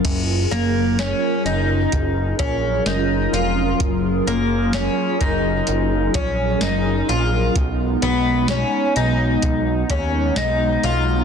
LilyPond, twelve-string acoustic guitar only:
\new Staff \with { instrumentName = "Twelve-string acoustic guitar" } { \time 4/4 \key fis \major \tempo 4 = 64 r8 ais8 cis'8 dis'4 cis'8 dis'8 eis'8 | r8 ais8 cis'8 dis'4 cis'8 dis'8 eis'8 | r8 b8 cis'8 dis'4 cis'8 dis'8 eis'8 | }